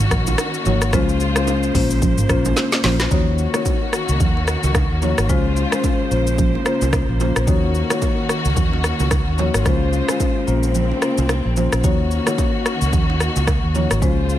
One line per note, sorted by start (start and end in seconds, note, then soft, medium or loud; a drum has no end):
0.00 0.91 D#3 medium
0.00 0.89 A#3 medium
0.00 0.91 C#4 medium
0.00 0.91 F#4 medium
0.00 mid tom loud
0.11 0.33 A#1 loud
0.11 kick loud
0.11 cross-stick medium
0.11 shaker medium
0.27 high bongo medium
0.27 low bongo medium
0.27 shaker medium
0.38 cross-stick medium
0.38 high bongo medium
0.38 shaker medium
0.54 shaker medium
0.65 0.94 G#1 medium
0.65 0.91 A#3 medium
0.65 0.91 D#4 medium
0.65 0.91 F#4 medium
0.65 0.91 C#5 medium
0.65 low bongo medium
0.65 low conga medium
0.65 shaker medium
0.82 cross-stick medium
0.82 shaker medium
0.93 1.71 C#2 loud
0.93 3.09 C#3 medium
0.93 1.32 G#3 medium
0.93 1.74 G#3 medium
0.93 1.32 C#4 medium
0.93 1.74 F4 medium
0.93 1.32 F4 medium
0.93 3.09 C5 medium
0.93 1.32 C5 loud
0.93 kick loud
0.93 cross-stick medium
0.93 low conga medium
0.93 shaker medium
1.09 shaker soft
1.20 shaker medium
1.36 1.52 G#3 medium
1.36 1.52 C#4 medium
1.36 1.52 F4 medium
1.36 1.53 C5 medium
1.36 cross-stick loud
1.36 shaker loud
1.47 high bongo medium
1.47 shaker medium
1.63 shaker medium
1.75 2.18 A#1 medium
1.75 1.94 A#3 medium
1.75 3.10 A#3 medium
1.75 1.94 C#4 medium
1.75 1.94 F4 medium
1.75 1.94 C5 medium
1.75 kick medium
1.75 open hi-hat medium
1.75 low bongo medium
1.75 shaker medium
1.91 shaker medium
2.02 kick loud
2.02 low conga medium
2.02 shaker medium
2.18 mid tom medium
2.18 shaker medium
2.29 2.51 A#1 loud
2.29 2.49 A#3 medium
2.29 2.49 C#4 medium
2.29 2.49 F4 medium
2.29 2.49 C5 medium
2.29 kick medium
2.29 cross-stick medium
2.29 shaker medium
2.45 high bongo medium
2.45 low bongo medium
2.45 shaker medium
2.56 snare medium
2.56 high bongo medium
2.56 shaker medium
2.72 snare medium
2.72 shaker medium
2.84 3.06 A#1 medium
2.84 3.09 A#3 medium
2.84 3.09 C#4 medium
2.84 3.09 F4 medium
2.84 3.09 C5 medium
2.84 snare loud
2.84 open hi-hat medium
2.84 low bongo medium
2.84 low conga medium
2.84 shaker medium
3.00 snare medium
3.00 shaker loud
3.11 3.46 D#2 loud
3.11 5.27 D#3 medium
3.11 3.50 A#3 medium
3.11 5.27 A#3 medium
3.11 5.27 C#4 medium
3.11 3.50 D#4 medium
3.11 5.27 F#4 medium
3.11 3.51 F#4 medium
3.11 3.51 C#5 loud
3.11 kick loud
3.11 low conga medium
3.11 shaker medium
3.38 shaker medium
3.54 3.70 A#3 medium
3.54 3.71 D#4 medium
3.54 3.71 F#4 medium
3.54 3.71 C#5 medium
3.54 cross-stick medium
3.54 low bongo medium
3.54 shaker medium
3.65 kick medium
3.65 high bongo medium
3.65 shaker medium
3.93 cross-stick medium
3.93 shaker medium
4.09 4.18 C#2 medium
4.09 shaker medium
4.20 4.55 D#2 medium
4.20 kick loud
4.20 low conga medium
4.20 shaker medium
4.37 high bongo soft
4.48 cross-stick medium
4.48 shaker medium
4.63 4.85 C#2 medium
4.63 low bongo medium
4.63 shaker medium
4.75 kick loud
4.75 cross-stick medium
4.75 high bongo medium
4.75 shaker medium
4.91 5.12 D#2 medium
5.02 5.27 A#3 medium
5.02 5.27 D#4 medium
5.02 5.28 F#4 medium
5.02 5.28 C#5 medium
5.02 low bongo medium
5.02 low conga medium
5.02 shaker medium
5.18 5.27 G#1 medium
5.18 cross-stick medium
5.18 shaker medium
5.29 5.64 C#2 loud
5.29 7.45 C#3 medium
5.29 5.69 G#3 medium
5.29 6.10 G#3 medium
5.29 5.69 C#4 medium
5.29 6.10 F4 medium
5.29 5.69 F4 medium
5.29 7.45 C5 medium
5.29 5.69 C5 loud
5.29 kick loud
5.29 low conga medium
5.29 shaker medium
5.57 shaker soft
5.72 5.89 G#3 medium
5.72 5.89 C#4 medium
5.72 5.89 F4 medium
5.72 5.89 C5 medium
5.72 cross-stick loud
5.72 low bongo medium
5.72 shaker medium
5.84 kick medium
5.84 high bongo medium
5.84 shaker medium
6.11 6.55 A#1 loud
6.11 6.30 A#3 medium
6.11 9.62 A#3 medium
6.11 6.30 C#4 medium
6.11 6.31 F4 medium
6.11 6.31 C5 medium
6.11 shaker medium
6.27 shaker medium
6.38 kick loud
6.38 low conga medium
6.38 shaker medium
6.55 high bongo soft
6.65 6.85 A#3 medium
6.65 6.85 C#4 medium
6.65 6.85 F4 medium
6.65 6.85 C5 medium
6.65 cross-stick medium
6.65 shaker medium
6.81 7.03 C2 medium
6.81 low bongo medium
6.81 shaker medium
6.93 kick medium
6.93 cross-stick medium
6.93 high bongo medium
6.93 shaker medium
7.09 7.31 A#1 medium
7.20 7.46 A#3 medium
7.20 7.46 C#4 medium
7.20 7.46 F4 medium
7.20 7.46 C5 medium
7.20 low bongo medium
7.20 low conga medium
7.20 shaker medium
7.36 7.45 A#1 medium
7.36 cross-stick medium
7.36 shaker medium
7.47 7.82 D#2 loud
7.47 9.63 D#3 medium
7.47 7.87 A#3 medium
7.47 9.64 C#4 medium
7.47 7.87 D#4 medium
7.47 9.63 F#4 medium
7.47 7.87 F#4 medium
7.47 7.87 C#5 loud
7.47 kick loud
7.47 low conga medium
7.47 shaker medium
7.75 shaker medium
7.90 8.07 A#3 medium
7.90 8.07 D#4 medium
7.90 8.07 F#4 medium
7.90 8.07 C#5 medium
7.90 cross-stick loud
7.90 low bongo medium
7.90 shaker medium
8.02 kick medium
8.02 high bongo medium
8.02 shaker medium
8.29 cross-stick medium
8.29 shaker medium
8.45 8.54 C#2 medium
8.45 shaker medium
8.57 8.91 D#2 loud
8.57 kick loud
8.57 low conga medium
8.57 shaker medium
8.73 high bongo soft
8.84 cross-stick medium
8.84 shaker medium
9.00 9.21 C#2 medium
9.00 low bongo medium
9.00 shaker medium
9.11 kick medium
9.11 cross-stick medium
9.11 high bongo medium
9.11 shaker medium
9.27 9.49 D#2 medium
9.38 9.64 A#3 medium
9.38 9.64 D#4 medium
9.38 9.64 F#4 medium
9.38 9.64 C#5 medium
9.38 low bongo medium
9.38 low conga medium
9.38 shaker medium
9.54 9.63 G#1 medium
9.54 cross-stick medium
9.54 shaker medium
9.65 10.00 C#2 loud
9.65 11.82 C#3 medium
9.65 10.05 G#3 medium
9.65 10.47 G#3 medium
9.65 10.05 C#4 medium
9.65 10.47 F4 medium
9.65 10.05 F4 medium
9.65 10.47 C5 medium
9.65 10.05 C5 loud
9.65 kick loud
9.65 cross-stick medium
9.65 low conga medium
9.65 shaker medium
9.93 shaker soft
10.08 10.25 G#3 medium
10.08 10.25 C#4 medium
10.08 10.25 F4 medium
10.08 10.25 C5 medium
10.08 cross-stick medium
10.08 low bongo medium
10.08 shaker medium
10.20 kick medium
10.20 high bongo medium
10.20 shaker medium
10.47 10.91 A#1 loud
10.47 10.67 A#3 medium
10.47 11.82 A#3 medium
10.47 11.82 C4 medium
10.47 10.67 C#4 medium
10.47 10.67 F4 medium
10.47 10.67 C5 medium
10.47 shaker medium
10.63 shaker medium
10.75 low conga medium
10.75 shaker medium
10.91 high bongo soft
11.02 11.21 A#3 medium
11.02 11.21 C#4 medium
11.02 11.22 F4 medium
11.02 11.22 C5 medium
11.02 cross-stick medium
11.02 shaker medium
11.18 11.40 C2 medium
11.18 low bongo medium
11.18 shaker medium
11.29 cross-stick medium
11.29 high bongo medium
11.29 shaker medium
11.45 11.67 A#1 medium
11.56 11.82 A#3 medium
11.56 11.82 C#4 medium
11.56 11.82 F4 medium
11.56 11.82 C5 medium
11.56 low bongo medium
11.56 low conga medium
11.56 shaker medium
11.72 11.82 A#1 medium
11.72 cross-stick medium
11.72 shaker medium
11.84 12.18 D#2 loud
11.84 14.00 D#3 medium
11.84 12.23 A#3 medium
11.84 14.00 A#3 medium
11.84 14.00 C#4 medium
11.84 12.23 D#4 medium
11.84 14.00 F#4 medium
11.84 12.23 F#4 medium
11.84 12.23 C#5 loud
11.84 kick loud
11.84 low conga medium
11.84 shaker medium
12.11 shaker medium
12.27 12.43 A#3 medium
12.27 12.43 D#4 medium
12.27 12.43 F#4 medium
12.27 12.44 C#5 medium
12.27 cross-stick medium
12.27 low bongo medium
12.27 shaker medium
12.38 kick medium
12.38 high bongo medium
12.38 shaker medium
12.66 cross-stick medium
12.66 shaker medium
12.81 12.91 C#2 medium
12.81 shaker medium
12.93 13.27 D#2 medium
12.93 kick loud
12.93 low conga medium
12.93 shaker medium
13.10 high bongo soft
13.20 cross-stick medium
13.20 shaker medium
13.36 13.58 C#2 medium
13.36 low bongo medium
13.36 shaker medium
13.47 kick medium
13.47 cross-stick medium
13.47 high bongo medium
13.47 shaker medium
13.63 13.85 D#2 medium
13.75 14.00 A#3 medium
13.75 14.00 D#4 medium
13.75 14.00 F#4 medium
13.75 14.00 C#5 medium
13.75 low bongo medium
13.75 low conga medium
13.75 shaker medium
13.91 14.00 G#1 medium
13.91 cross-stick medium
13.91 shaker medium
14.02 14.36 C#2 loud
14.02 14.39 C#3 medium
14.02 14.39 G#3 medium
14.02 14.39 C#4 medium
14.02 14.39 F4 medium
14.02 14.39 C5 medium
14.02 14.39 C5 loud
14.02 kick loud
14.02 low conga medium
14.02 shaker medium
14.29 shaker medium